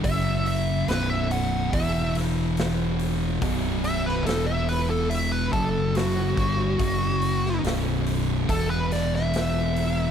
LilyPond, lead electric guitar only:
\new Staff \with { instrumentName = "Lead electric guitar" } { \time 4/4 \key e \dorian \tempo 4 = 71 e''8 e''8 b'16 e''16 fis''8 e''8 r4. | r8 e''16 b'16 a'16 e''16 b'16 a'16 e''16 b'16 a'8 fis'4~ | fis'4 r4 a'16 b'16 d''16 e''4~ e''16 | }